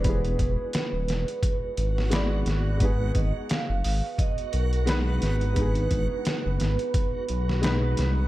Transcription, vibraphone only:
0.05 B4
2.82 B4
3.16 D#5
3.50 F5
4.18 D#5
4.53 A#4
4.86 B4
5.56 B4

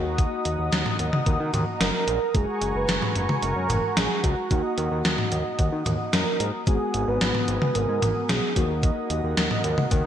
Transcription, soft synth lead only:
Already playing: F#4
1.81 A#4
2.35 G#4
2.75 B4
3.43 A#4
3.97 G#4
4.24 F#4
6.13 A#4
6.67 G#4
7.08 B4
7.75 A#4
8.29 G#4
8.56 F#4

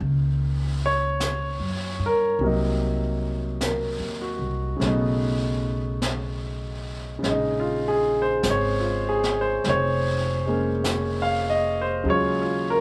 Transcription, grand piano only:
Already playing: D#3 A#3 F4 G#4
0.86 C#5
2.06 A#4
2.41 C3 F#3 A#3
2.46 D#4
3.63 A#4
4.22 F#4
4.76 C#3 A3
4.83 B3 D#4
7.19 C#3 G#3
7.30 D#4
7.60 F4
7.88 G#4
8.22 C5
8.50 C#5
8.80 F4
9.09 G#4
9.41 C5
9.65 C5
9.69 C#5
10.46 G#3 A#3 C#4
11.22 F5
11.50 D#5
11.81 C5
12.04 C#3 F#3 G#3
12.09 F4 C#5
12.42 F4
12.70 A#4

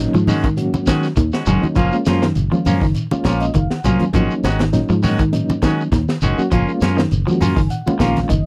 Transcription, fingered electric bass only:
0.15 G#2
1.17 D#2
1.47 F#1
1.63 muted fingered electric bass stroke
1.76 F#1
2.07 F#2
2.36 F#1
2.66 F#2
2.81 F#1
3.12 muted fingered electric bass stroke
3.25 A#1
3.55 F#1
3.84 C2
4.00 muted fingered electric bass stroke
4.14 G#1
4.43 G#1
4.90 G#2
5.92 D#2
6.22 F#1
6.52 F#1
6.82 F#2
7.11 F#1
7.41 F#2
7.56 F#1
7.87 muted fingered electric bass stroke
8.00 A#1
8.30 F#1

